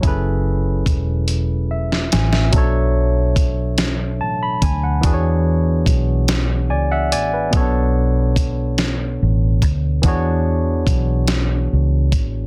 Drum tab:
HH |x---x-x---x-|x---x-x---x-|x---x-x---x-|x---x-x---x-|
SD |---------ooo|------o-----|------o-----|------o-----|
BD |o---o-------|o---o-----o-|o---o-------|o---o-----o-|

HH |x---x-x---x-|
SD |------o-----|
BD |o---o-----o-|